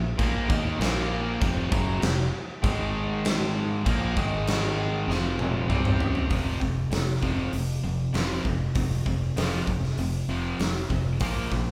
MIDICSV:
0, 0, Header, 1, 4, 480
1, 0, Start_track
1, 0, Tempo, 612870
1, 1102, Time_signature, 4, 2, 24, 8
1, 9171, End_track
2, 0, Start_track
2, 0, Title_t, "Distorted electric guitar"
2, 0, Program_c, 0, 30
2, 0, Note_on_c, 0, 46, 62
2, 0, Note_on_c, 0, 53, 70
2, 93, Note_off_c, 0, 46, 0
2, 94, Note_off_c, 0, 53, 0
2, 140, Note_on_c, 0, 46, 89
2, 147, Note_on_c, 0, 53, 104
2, 151, Note_on_c, 0, 58, 101
2, 374, Note_off_c, 0, 46, 0
2, 376, Note_off_c, 0, 58, 0
2, 377, Note_off_c, 0, 53, 0
2, 380, Note_on_c, 0, 51, 92
2, 385, Note_on_c, 0, 58, 103
2, 388, Note_on_c, 0, 63, 101
2, 613, Note_off_c, 0, 51, 0
2, 616, Note_off_c, 0, 58, 0
2, 617, Note_off_c, 0, 63, 0
2, 620, Note_on_c, 0, 46, 89
2, 623, Note_on_c, 0, 53, 99
2, 628, Note_on_c, 0, 58, 100
2, 1094, Note_off_c, 0, 46, 0
2, 1095, Note_off_c, 0, 53, 0
2, 1098, Note_off_c, 0, 58, 0
2, 1106, Note_on_c, 0, 41, 95
2, 1111, Note_on_c, 0, 48, 108
2, 1116, Note_on_c, 0, 53, 118
2, 1331, Note_off_c, 0, 41, 0
2, 1334, Note_on_c, 0, 42, 87
2, 1337, Note_off_c, 0, 48, 0
2, 1340, Note_on_c, 0, 49, 85
2, 1342, Note_off_c, 0, 53, 0
2, 1346, Note_on_c, 0, 54, 95
2, 1571, Note_off_c, 0, 42, 0
2, 1574, Note_off_c, 0, 49, 0
2, 1575, Note_on_c, 0, 41, 65
2, 1577, Note_off_c, 0, 54, 0
2, 1578, Note_on_c, 0, 48, 75
2, 1770, Note_off_c, 0, 41, 0
2, 1772, Note_off_c, 0, 48, 0
2, 2060, Note_on_c, 0, 44, 93
2, 2064, Note_on_c, 0, 51, 97
2, 2067, Note_on_c, 0, 56, 103
2, 3009, Note_off_c, 0, 51, 0
2, 3012, Note_on_c, 0, 46, 92
2, 3013, Note_off_c, 0, 44, 0
2, 3013, Note_off_c, 0, 56, 0
2, 3016, Note_on_c, 0, 53, 106
2, 3018, Note_on_c, 0, 58, 108
2, 3249, Note_off_c, 0, 46, 0
2, 3251, Note_off_c, 0, 53, 0
2, 3252, Note_off_c, 0, 58, 0
2, 3256, Note_on_c, 0, 44, 82
2, 3261, Note_on_c, 0, 51, 85
2, 3264, Note_on_c, 0, 56, 95
2, 3970, Note_off_c, 0, 44, 0
2, 3973, Note_off_c, 0, 51, 0
2, 3975, Note_off_c, 0, 56, 0
2, 3976, Note_on_c, 0, 41, 93
2, 3979, Note_on_c, 0, 48, 94
2, 3984, Note_on_c, 0, 53, 105
2, 4442, Note_off_c, 0, 48, 0
2, 4450, Note_off_c, 0, 41, 0
2, 4451, Note_on_c, 0, 48, 94
2, 4454, Note_off_c, 0, 53, 0
2, 4457, Note_on_c, 0, 55, 94
2, 4457, Note_on_c, 0, 60, 106
2, 4928, Note_off_c, 0, 48, 0
2, 4930, Note_off_c, 0, 55, 0
2, 4930, Note_off_c, 0, 60, 0
2, 4941, Note_on_c, 0, 41, 74
2, 4944, Note_on_c, 0, 48, 87
2, 4944, Note_on_c, 0, 53, 85
2, 5165, Note_off_c, 0, 41, 0
2, 5167, Note_off_c, 0, 48, 0
2, 5167, Note_off_c, 0, 53, 0
2, 5178, Note_on_c, 0, 41, 57
2, 5184, Note_on_c, 0, 48, 60
2, 5394, Note_off_c, 0, 41, 0
2, 5397, Note_off_c, 0, 48, 0
2, 5422, Note_on_c, 0, 41, 69
2, 5426, Note_on_c, 0, 48, 76
2, 5636, Note_off_c, 0, 41, 0
2, 5638, Note_off_c, 0, 48, 0
2, 5664, Note_on_c, 0, 41, 74
2, 5667, Note_on_c, 0, 48, 82
2, 5671, Note_on_c, 0, 53, 85
2, 5886, Note_off_c, 0, 41, 0
2, 5888, Note_off_c, 0, 48, 0
2, 5890, Note_off_c, 0, 53, 0
2, 5907, Note_on_c, 0, 41, 70
2, 5909, Note_on_c, 0, 48, 74
2, 6119, Note_off_c, 0, 41, 0
2, 6120, Note_off_c, 0, 48, 0
2, 6140, Note_on_c, 0, 41, 63
2, 6145, Note_on_c, 0, 48, 70
2, 6355, Note_off_c, 0, 41, 0
2, 6357, Note_off_c, 0, 48, 0
2, 6379, Note_on_c, 0, 41, 83
2, 6385, Note_on_c, 0, 48, 87
2, 6390, Note_on_c, 0, 53, 91
2, 6604, Note_off_c, 0, 41, 0
2, 6607, Note_off_c, 0, 48, 0
2, 6610, Note_off_c, 0, 53, 0
2, 6625, Note_on_c, 0, 41, 61
2, 6630, Note_on_c, 0, 48, 67
2, 6837, Note_off_c, 0, 41, 0
2, 6840, Note_off_c, 0, 48, 0
2, 6862, Note_on_c, 0, 41, 77
2, 6871, Note_on_c, 0, 48, 71
2, 7076, Note_off_c, 0, 41, 0
2, 7080, Note_off_c, 0, 48, 0
2, 7103, Note_on_c, 0, 41, 58
2, 7105, Note_on_c, 0, 48, 64
2, 7316, Note_off_c, 0, 41, 0
2, 7318, Note_off_c, 0, 48, 0
2, 7342, Note_on_c, 0, 41, 87
2, 7346, Note_on_c, 0, 48, 88
2, 7352, Note_on_c, 0, 53, 86
2, 7565, Note_off_c, 0, 41, 0
2, 7568, Note_off_c, 0, 48, 0
2, 7570, Note_off_c, 0, 53, 0
2, 7587, Note_on_c, 0, 41, 61
2, 7593, Note_on_c, 0, 48, 66
2, 7799, Note_off_c, 0, 41, 0
2, 7801, Note_off_c, 0, 48, 0
2, 7821, Note_on_c, 0, 41, 63
2, 7824, Note_on_c, 0, 48, 76
2, 8036, Note_off_c, 0, 41, 0
2, 8037, Note_off_c, 0, 48, 0
2, 8059, Note_on_c, 0, 41, 78
2, 8063, Note_on_c, 0, 48, 85
2, 8065, Note_on_c, 0, 53, 101
2, 8284, Note_off_c, 0, 41, 0
2, 8284, Note_off_c, 0, 48, 0
2, 8287, Note_off_c, 0, 53, 0
2, 8293, Note_on_c, 0, 41, 68
2, 8293, Note_on_c, 0, 48, 77
2, 8512, Note_off_c, 0, 41, 0
2, 8512, Note_off_c, 0, 48, 0
2, 8534, Note_on_c, 0, 41, 68
2, 8534, Note_on_c, 0, 48, 78
2, 8752, Note_off_c, 0, 48, 0
2, 8753, Note_off_c, 0, 41, 0
2, 8777, Note_on_c, 0, 46, 81
2, 8780, Note_on_c, 0, 53, 86
2, 8785, Note_on_c, 0, 58, 95
2, 9004, Note_off_c, 0, 46, 0
2, 9005, Note_off_c, 0, 53, 0
2, 9008, Note_off_c, 0, 58, 0
2, 9025, Note_on_c, 0, 46, 58
2, 9027, Note_on_c, 0, 53, 62
2, 9171, Note_off_c, 0, 46, 0
2, 9171, Note_off_c, 0, 53, 0
2, 9171, End_track
3, 0, Start_track
3, 0, Title_t, "Fingered electric bass"
3, 0, Program_c, 1, 33
3, 0, Note_on_c, 1, 34, 83
3, 122, Note_off_c, 1, 34, 0
3, 148, Note_on_c, 1, 34, 96
3, 368, Note_off_c, 1, 34, 0
3, 388, Note_on_c, 1, 39, 94
3, 608, Note_off_c, 1, 39, 0
3, 622, Note_on_c, 1, 34, 94
3, 1071, Note_off_c, 1, 34, 0
3, 1109, Note_on_c, 1, 29, 93
3, 1329, Note_off_c, 1, 29, 0
3, 1348, Note_on_c, 1, 30, 95
3, 1568, Note_off_c, 1, 30, 0
3, 1589, Note_on_c, 1, 29, 76
3, 1809, Note_off_c, 1, 29, 0
3, 2066, Note_on_c, 1, 32, 103
3, 2992, Note_off_c, 1, 32, 0
3, 3025, Note_on_c, 1, 34, 94
3, 3246, Note_off_c, 1, 34, 0
3, 3265, Note_on_c, 1, 32, 100
3, 3951, Note_off_c, 1, 32, 0
3, 3979, Note_on_c, 1, 29, 92
3, 4427, Note_off_c, 1, 29, 0
3, 4459, Note_on_c, 1, 36, 95
3, 4907, Note_off_c, 1, 36, 0
3, 4938, Note_on_c, 1, 29, 78
3, 5137, Note_off_c, 1, 29, 0
3, 5183, Note_on_c, 1, 29, 81
3, 5380, Note_off_c, 1, 29, 0
3, 5412, Note_on_c, 1, 29, 79
3, 5613, Note_off_c, 1, 29, 0
3, 5659, Note_on_c, 1, 29, 83
3, 5857, Note_off_c, 1, 29, 0
3, 5899, Note_on_c, 1, 29, 89
3, 6097, Note_off_c, 1, 29, 0
3, 6139, Note_on_c, 1, 29, 78
3, 6337, Note_off_c, 1, 29, 0
3, 6377, Note_on_c, 1, 29, 76
3, 6576, Note_off_c, 1, 29, 0
3, 6620, Note_on_c, 1, 29, 83
3, 6818, Note_off_c, 1, 29, 0
3, 6857, Note_on_c, 1, 29, 87
3, 7056, Note_off_c, 1, 29, 0
3, 7098, Note_on_c, 1, 29, 85
3, 7297, Note_off_c, 1, 29, 0
3, 7339, Note_on_c, 1, 29, 80
3, 7537, Note_off_c, 1, 29, 0
3, 7578, Note_on_c, 1, 29, 86
3, 7777, Note_off_c, 1, 29, 0
3, 7814, Note_on_c, 1, 29, 91
3, 8015, Note_off_c, 1, 29, 0
3, 8055, Note_on_c, 1, 29, 82
3, 8255, Note_off_c, 1, 29, 0
3, 8298, Note_on_c, 1, 29, 83
3, 8497, Note_off_c, 1, 29, 0
3, 8538, Note_on_c, 1, 29, 82
3, 8778, Note_off_c, 1, 29, 0
3, 8778, Note_on_c, 1, 34, 83
3, 8977, Note_off_c, 1, 34, 0
3, 9022, Note_on_c, 1, 34, 85
3, 9171, Note_off_c, 1, 34, 0
3, 9171, End_track
4, 0, Start_track
4, 0, Title_t, "Drums"
4, 148, Note_on_c, 9, 36, 95
4, 151, Note_on_c, 9, 49, 60
4, 227, Note_off_c, 9, 36, 0
4, 229, Note_off_c, 9, 49, 0
4, 390, Note_on_c, 9, 36, 100
4, 469, Note_off_c, 9, 36, 0
4, 633, Note_on_c, 9, 49, 60
4, 642, Note_on_c, 9, 38, 113
4, 711, Note_off_c, 9, 49, 0
4, 721, Note_off_c, 9, 38, 0
4, 1109, Note_on_c, 9, 36, 109
4, 1111, Note_on_c, 9, 49, 55
4, 1187, Note_off_c, 9, 36, 0
4, 1190, Note_off_c, 9, 49, 0
4, 1347, Note_on_c, 9, 36, 107
4, 1425, Note_off_c, 9, 36, 0
4, 1583, Note_on_c, 9, 49, 58
4, 1592, Note_on_c, 9, 38, 112
4, 1661, Note_off_c, 9, 49, 0
4, 1671, Note_off_c, 9, 38, 0
4, 2065, Note_on_c, 9, 49, 60
4, 2066, Note_on_c, 9, 36, 105
4, 2143, Note_off_c, 9, 49, 0
4, 2145, Note_off_c, 9, 36, 0
4, 2543, Note_on_c, 9, 49, 62
4, 2553, Note_on_c, 9, 38, 123
4, 2622, Note_off_c, 9, 49, 0
4, 2631, Note_off_c, 9, 38, 0
4, 3025, Note_on_c, 9, 36, 105
4, 3028, Note_on_c, 9, 49, 62
4, 3103, Note_off_c, 9, 36, 0
4, 3106, Note_off_c, 9, 49, 0
4, 3264, Note_on_c, 9, 36, 97
4, 3343, Note_off_c, 9, 36, 0
4, 3504, Note_on_c, 9, 49, 71
4, 3513, Note_on_c, 9, 38, 111
4, 3582, Note_off_c, 9, 49, 0
4, 3591, Note_off_c, 9, 38, 0
4, 3996, Note_on_c, 9, 38, 56
4, 4074, Note_off_c, 9, 38, 0
4, 4223, Note_on_c, 9, 48, 70
4, 4301, Note_off_c, 9, 48, 0
4, 4463, Note_on_c, 9, 47, 92
4, 4541, Note_off_c, 9, 47, 0
4, 4584, Note_on_c, 9, 45, 78
4, 4662, Note_off_c, 9, 45, 0
4, 4702, Note_on_c, 9, 43, 98
4, 4781, Note_off_c, 9, 43, 0
4, 4818, Note_on_c, 9, 43, 90
4, 4896, Note_off_c, 9, 43, 0
4, 4936, Note_on_c, 9, 46, 46
4, 4940, Note_on_c, 9, 36, 98
4, 5014, Note_off_c, 9, 46, 0
4, 5018, Note_off_c, 9, 36, 0
4, 5180, Note_on_c, 9, 36, 72
4, 5259, Note_off_c, 9, 36, 0
4, 5417, Note_on_c, 9, 46, 51
4, 5426, Note_on_c, 9, 38, 108
4, 5495, Note_off_c, 9, 46, 0
4, 5504, Note_off_c, 9, 38, 0
4, 5659, Note_on_c, 9, 36, 76
4, 5737, Note_off_c, 9, 36, 0
4, 5897, Note_on_c, 9, 46, 46
4, 5975, Note_off_c, 9, 46, 0
4, 6376, Note_on_c, 9, 46, 54
4, 6386, Note_on_c, 9, 38, 103
4, 6455, Note_off_c, 9, 46, 0
4, 6464, Note_off_c, 9, 38, 0
4, 6618, Note_on_c, 9, 36, 81
4, 6696, Note_off_c, 9, 36, 0
4, 6853, Note_on_c, 9, 46, 54
4, 6857, Note_on_c, 9, 36, 103
4, 6931, Note_off_c, 9, 46, 0
4, 6936, Note_off_c, 9, 36, 0
4, 7097, Note_on_c, 9, 36, 73
4, 7175, Note_off_c, 9, 36, 0
4, 7338, Note_on_c, 9, 46, 58
4, 7348, Note_on_c, 9, 38, 106
4, 7417, Note_off_c, 9, 46, 0
4, 7426, Note_off_c, 9, 38, 0
4, 7576, Note_on_c, 9, 36, 78
4, 7655, Note_off_c, 9, 36, 0
4, 7703, Note_on_c, 9, 38, 28
4, 7781, Note_off_c, 9, 38, 0
4, 7814, Note_on_c, 9, 46, 47
4, 7893, Note_off_c, 9, 46, 0
4, 8298, Note_on_c, 9, 46, 55
4, 8307, Note_on_c, 9, 38, 104
4, 8376, Note_off_c, 9, 46, 0
4, 8385, Note_off_c, 9, 38, 0
4, 8538, Note_on_c, 9, 36, 81
4, 8616, Note_off_c, 9, 36, 0
4, 8770, Note_on_c, 9, 46, 47
4, 8777, Note_on_c, 9, 36, 107
4, 8849, Note_off_c, 9, 46, 0
4, 8856, Note_off_c, 9, 36, 0
4, 9020, Note_on_c, 9, 36, 77
4, 9027, Note_on_c, 9, 38, 27
4, 9098, Note_off_c, 9, 36, 0
4, 9105, Note_off_c, 9, 38, 0
4, 9171, End_track
0, 0, End_of_file